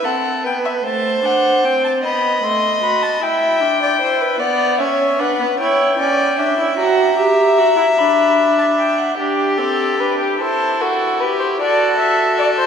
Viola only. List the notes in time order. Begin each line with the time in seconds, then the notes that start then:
0.05 C4
0.46 B3
0.84 A3
1.23 D4
1.64 C4
2.03 B3
2.43 A3
2.82 F#4
3.22 E4
3.61 D4
4.01 E4
4.40 B3
4.80 C#4
5.19 D4
5.40 B3
5.59 E4
5.99 C#4
6.39 D4
6.59 E4
6.77 F#4
7.17 G4
7.58 F#4
7.77 E4
7.97 D4
9.18 D4
9.58 C4
9.99 D4
10.39 E4
11.60 F#4